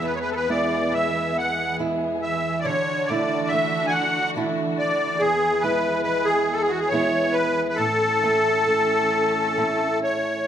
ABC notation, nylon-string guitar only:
X:1
M:3/4
L:1/8
Q:1/4=69
K:Emix
V:1 name="Nylon-string guitar"
[E,,G,B,E] [G,B,E] G,2 [G,B,E]2 | D, [A,DE] A,2 [A,DE]2 | E,, [G,B,E] G,2 [G,B,E]2 | A,, [A,CE] A,2 [A,CE]2 |]